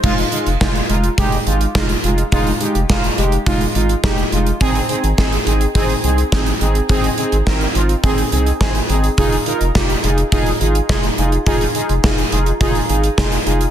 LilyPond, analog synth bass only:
\new Staff \with { instrumentName = "Analog synth bass" } { \clef bass \time 4/4 \key f \minor \tempo 4 = 105 f,,8 r16 f,,16 f,,8 f,,8 f,,8 aes,,8 f,,8 f,,8 | f,,8 r16 f,,16 f,,8 f,,8 f,,8 aes,,8 f,,8 f,,8 | aes,,8 r16 aes,,16 aes,,8 aes,,8 aes,,8 c,8 aes,,8 aes,,8 | aes,,8 r16 aes,,16 aes,,8 aes,,8 aes,,8 c,8 aes,,8 aes,,8 |
f,,8 r16 f,,16 f,,8 f,,8 f,,8 aes,,8 f,,8 f,,8 | f,,8 r16 f,,16 f,,8 f,,8 f,,8 aes,,8 f,,8 f,,8 | }